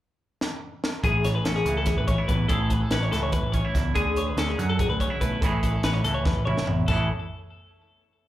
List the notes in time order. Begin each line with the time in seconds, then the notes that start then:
0.41 snare
0.84 snare
1.03 A1 A2 G#4, kick, closed hi-hat
1.24 C#5, snare, closed hi-hat
1.35 B4
1.44 A1 C#4 A4, snare, closed hi-hat
1.56 G#4
1.65 C#2 E3, closed hi-hat
1.77 A4
1.86 E2 G#4, kick, snare, closed hi-hat
1.97 A1 B4
2.08 C#4 C#5, kick, closed hi-hat
2.18 E4
2.28 A1 E2 B4, kick, closed hi-hat
2.48 A1 A2 G#4 A4, kick, closed hi-hat
2.70 B4, kick, closed hi-hat
2.81 A4
2.91 A1 C#4 B4, snare, closed hi-hat
3.03 C#5
3.12 C#2 E3 A4, snare, closed hi-hat
3.23 C#5
3.32 E2 B4, kick, closed hi-hat
3.42 A1
3.52 C#4 C#5, kick, closed hi-hat
3.65 E4
3.74 C#2 E2, kick, snare, closed hi-hat
3.94 D2 D3 G#4, kick, closed hi-hat
4.16 C#5, closed hi-hat
4.28 B4
4.37 D2 C#4 A4, snare, closed hi-hat
4.49 G#4
4.58 F#2 F#3, closed hi-hat
4.70 A4
4.79 A1 G#4, kick, closed hi-hat
4.90 D2 B4
5.00 C#4 C#5, kick, closed hi-hat
5.10 E4
5.21 B1 A2 B4, kick, closed hi-hat
5.41 A1 A2 E3 C#4 E4 A4, kick, closed hi-hat
5.46 G#4
5.63 B4, kick, closed hi-hat
5.73 A4
5.83 A1 C#4 B4, snare, closed hi-hat
5.94 C#5
6.04 C#2 E3 A4, closed hi-hat
6.14 C#5
6.25 E2 B4, kick, snare
6.36 A1
6.45 E4 C#5, mid tom
6.57 snare
6.66 A1 E2, floor tom
6.88 A1 A2 E3 C#4 E4 A4, kick, crash
6.92 G#4